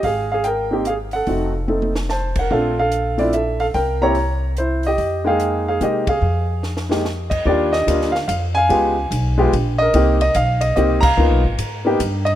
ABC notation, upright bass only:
X:1
M:3/4
L:1/8
Q:"Swing" 1/4=145
K:Fm
V:1 name="Upright bass" clef=bass
A,,,6 | F,,,6 | B,,,6 | C,,6 |
F,,4 C,2 | F,,6 | E,,2 =D,,2 F,,2 | D,,2 _C,,2 B,,,2 |
C,,2 =B,,,2 C,,2 | (3D,, _C,, A,,, A,,2 G,,2 |]